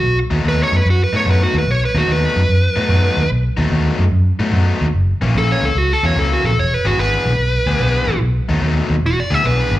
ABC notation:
X:1
M:4/4
L:1/8
Q:"Swing" 1/4=147
K:Bmix
V:1 name="Lead electric guitar"
F z (3B c B (3F B c (3B F B | (3c B F B6 | z8 | z2 (3A c A (3F A c (3A F A |
(3c B F B6 | z4 (3F =d e B z |]
V:2 name="Overdriven electric guitar"
z [B,,F,A,D] [B,,F,A,D] z2 [B,,F,A,D] [B,,F,A,D] z | z [B,,F,A,D] [B,,F,A,D] z2 [B,,F,A,D] [B,,F,A,D] z | z [B,,F,A,D] [B,,F,A,D] z2 [B,,F,A,D] [B,,F,A,D] z | z [F,,E,^A,C] [F,,E,A,C] z2 [F,,E,A,C] [F,,E,A,C] z |
z [E,B,=DG] [E,B,DG] z2 [E,B,DG] [E,B,DG] z | z [B,,F,A,D] [B,,F,A,D] z2 [E,B,=DG] [E,B,DG] z |]
V:3 name="Fingered electric bass" clef=bass
B,,, D,, D,, F,, F,, A,, F,, D,, | B,,, D,, D,, F,, F,, A,, F,, D,, | B,,, D,, D,, F,, F,, A,, F,, D,, | F,,, ^A,,, A,,, C,, C,, E,, C,, A,,, |
E,,, G,,, G,,, B,,, B,,, =D,, B,,, A,,, | B,,, D,, D,, D,, E,,, =D,, B,,, G,,, |]